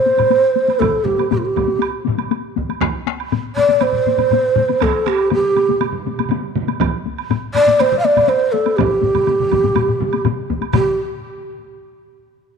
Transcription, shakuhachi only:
Already playing: C5
0.79 A4
1.04 G4
1.31 G4
1.38 F4
1.45 G4
3.56 D5
3.82 C5
4.82 A4
5.07 G4
5.34 G4
7.54 D5
7.80 C5
7.99 F5
8.05 D5
8.29 C5
8.52 A4
8.77 G4
10.74 G4

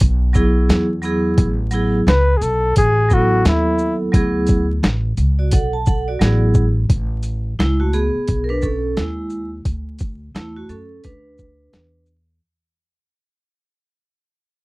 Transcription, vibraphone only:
0.33 F#3 B3 E4 G#4
1.02 F#3 B3 E4 G#4
1.71 F#3 B3 E4 G#4
3.09 F#3 B3 E4 A4
4.12 F#3 B3 E4 G#4
5.39 F#4 D5
5.52 A4 F#5
5.73 A5
5.87 A4 F#5
6.08 F#4 D5
6.19 F#3 B3 E4 G#4
7.59 G#3 E4
7.80 A3 F#4
7.93 B3 G#4
8.44 A#4
8.49 D4 B4
8.62 C#4 A4
8.97 G#3 E4
10.35 A3 E4
10.56 A3 F#4
10.69 C#4 A4
11.04 D4 B4

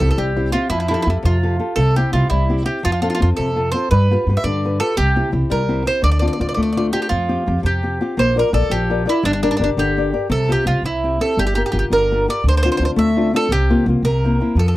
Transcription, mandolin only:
0.11 A4
0.18 G4
0.52 F4
0.70 E4
0.80 E4
0.88 E4
0.94 E4
1.02 E4
1.10 E4
1.25 F4
1.76 A4
1.96 G4
2.13 F4
2.30 E4
2.66 G4
2.85 F4
2.92 F4
3.02 F4
3.10 F4
3.15 F4
3.22 F4
3.37 A4
3.72 C5
3.91 B4
4.37 E5
4.44 D5
4.80 A4
4.97 G4
5.51 A#4
5.87 C5
6.04 D5
6.12 D5
6.19 D5
6.28 D5
6.33 D5
6.41 D5
6.49 D5
6.54 D5
6.63 D5
6.73 D5
6.77 D5
6.93 G4
7.02 G4
7.09 F4
7.66 G4
8.19 C5
8.39 A#4
8.54 A4
8.71 G4
9.09 E4
9.25 D4
9.33 D4
9.43 D4
9.51 D4
9.57 D4
9.64 D4
9.79 G4
10.32 A4
10.52 G4
10.67 F4
10.86 E4
11.21 A4
11.39 G4
11.47 G4
11.55 G4
11.66 G4
11.72 G4
11.79 G4
11.93 A#4
12.30 D5
12.49 C5
12.57 C5
12.63 C5
12.72 C5
12.77 C5
12.85 C5
12.99 E5
13.36 A4
13.52 G4
14.05 A#4
14.59 A4
14.68 A4

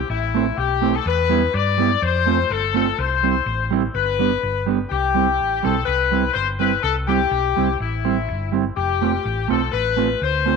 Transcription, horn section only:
0.09 E4
0.57 G4
0.95 A4
1.07 B4
1.54 D5
2.03 C5
2.50 A4
2.99 C5
3.95 B4
4.90 G4
5.64 A4
5.84 B4
6.34 C5
6.59 B4
6.83 A4
7.08 G4
7.80 E4
8.75 G4
9.51 A4
9.72 B4
10.22 C5

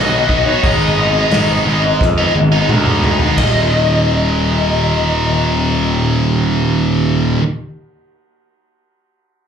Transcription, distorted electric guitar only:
Already playing: B2 F#3 B3 D#4 F#4
0.28 F#3 B3 D#4 F#4
0.45 B3 D#4 F#4
0.63 G#2 D#3 G#3 B3 D#4
1.14 G#3 B3 D#4
1.32 G#2 D#3 G#3 B3 D#4
1.66 D#3 G#3 B3 D#4
1.84 muted distorted electric guitar stroke
2.18 G#3 B3 D#4
2.35 muted distorted electric guitar stroke
2.52 G#3 B3 D#4
2.69 G#2 D#3 G#3 B3 D#4
3.03 D#3 G#3 B3 D#4
3.21 G#3 B3 D#4
3.37 D#2 A#2
3.41 D#3

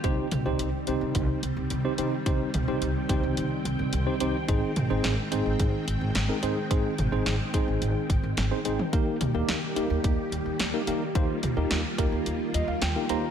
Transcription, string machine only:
0.04 D#3 G3 C4 G5
4.49 G#3
8.93 G3 A#3 G4
11.15 F4

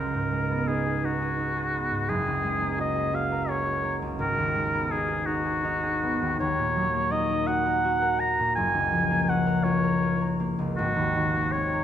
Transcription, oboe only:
Already playing: A#4
0.68 G#4
1.05 F#4
2.09 G#4
2.80 D#5
3.15 F5
3.49 C#5
4.20 A#4
4.92 G#4
5.26 F#4
6.40 C#5
7.11 D#5
7.47 F#5
8.20 A#5
8.55 G#5
9.29 F#5
9.64 C#5
10.76 F#4
11.52 C#5

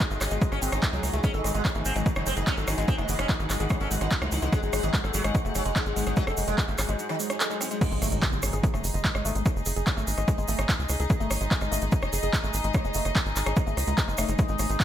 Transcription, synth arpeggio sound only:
0.00 G#4
0.11 A3
0.31 G#3
0.62 C4
0.72 C4
0.83 A3
0.93 F#3
1.03 A3
1.13 A3
1.24 G#3
1.34 A4
1.44 G#3
1.55 G#3
1.65 G#4
1.75 A3
1.96 G#3
2.26 G#3
2.37 G#4
2.47 G#3
2.57 A4
2.68 G#3
2.78 G#3
2.88 G#4
2.98 A3
3.19 G#3
3.50 G#3
3.60 G#4
3.70 G#3
3.81 A4
3.91 G#3
4.01 G#3
4.11 G#4
4.22 A3
4.42 G#3
4.73 G#3
4.83 G#4
4.94 G#3
5.04 A4
5.14 G#3
5.24 G#3
5.35 G#4
5.45 A3
5.66 G#3
5.96 G#3
6.07 G#4
6.17 G#3
6.27 A4
6.37 G#3
6.48 G#3
6.58 G#4
6.68 A3
6.89 G#3
7.20 G#3
7.30 F#3
7.40 A4
7.50 G#3
7.61 C4
7.71 G#3
7.81 G#3
7.92 G#3
8.02 A3
8.12 G#3
8.43 G#4
8.53 G#4
8.63 G#4
8.74 A3
8.94 G#3
9.05 G#3
9.15 G#3
9.25 A3
9.35 G#3
9.66 G#4
9.76 G#4
9.87 G#4
9.97 A3
10.18 G#3
10.28 G#3
10.38 G#3
10.48 A3
10.59 G#3
10.89 G#4
11.00 G#4
11.10 G#4
11.20 A3
11.41 G#3
11.51 G#3
11.61 G#3
11.72 A3
11.82 G#3
12.13 G#4
12.23 G#4
12.44 A3
12.64 G#3
12.74 G#3
12.85 G#3
12.95 A3
13.05 G#3
13.36 G#4
13.46 G#4
13.57 G#4
13.67 A3
13.87 G#3
13.98 G#3
14.08 G#3
14.18 A3
14.29 G#3
14.39 G#3
14.49 G#3
14.59 A3
14.70 G#3

